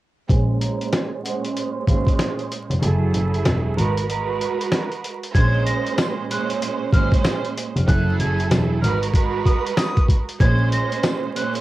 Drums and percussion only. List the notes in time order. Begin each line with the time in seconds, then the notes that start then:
0.30 kick, closed hi-hat
0.61 closed hi-hat
0.81 closed hi-hat
0.93 snare, closed hi-hat
1.26 closed hi-hat
1.45 closed hi-hat
1.57 closed hi-hat
1.87 kick, closed hi-hat
2.06 kick, closed hi-hat
2.19 snare, closed hi-hat
2.39 closed hi-hat
2.52 closed hi-hat
2.71 closed hi-hat
2.83 closed hi-hat
3.14 closed hi-hat
3.34 closed hi-hat
3.45 snare, closed hi-hat
3.78 closed hi-hat
3.97 closed hi-hat
4.09 closed hi-hat
4.41 closed hi-hat
4.61 closed hi-hat
4.72 snare, closed hi-hat
4.92 closed hi-hat
5.04 closed hi-hat
5.23 closed hi-hat
5.35 kick, closed hi-hat
5.67 closed hi-hat
5.87 closed hi-hat
5.98 snare, closed hi-hat, tambourine
6.31 closed hi-hat
6.50 closed hi-hat
6.62 closed hi-hat
6.93 kick, closed hi-hat
7.12 kick, closed hi-hat
7.24 snare, closed hi-hat, tambourine
7.45 closed hi-hat
7.57 closed hi-hat
7.77 closed hi-hat
7.88 kick, closed hi-hat
8.20 closed hi-hat
8.40 closed hi-hat
8.51 snare, closed hi-hat, tambourine
8.84 closed hi-hat
9.03 closed hi-hat
9.14 kick, closed hi-hat
9.46 kick, closed hi-hat
9.66 closed hi-hat
9.77 snare, closed hi-hat, tambourine
9.97 kick, closed hi-hat
10.09 kick, closed hi-hat
10.29 closed hi-hat
10.40 kick, closed hi-hat
10.72 closed hi-hat
10.92 closed hi-hat
11.03 snare, closed hi-hat, tambourine
11.36 closed hi-hat
11.55 closed hi-hat